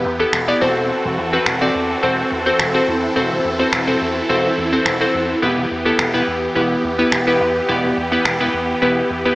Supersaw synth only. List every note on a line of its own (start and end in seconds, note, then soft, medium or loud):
0.00 9.35 E3 medium
0.00 0.57 B3 medium
0.00 0.57 G4 medium
0.62 5.39 C4 medium
0.62 2.86 F#4 medium
0.62 5.39 A4 medium
2.88 5.40 E4 medium
5.42 9.35 B3 medium
5.42 9.35 G4 medium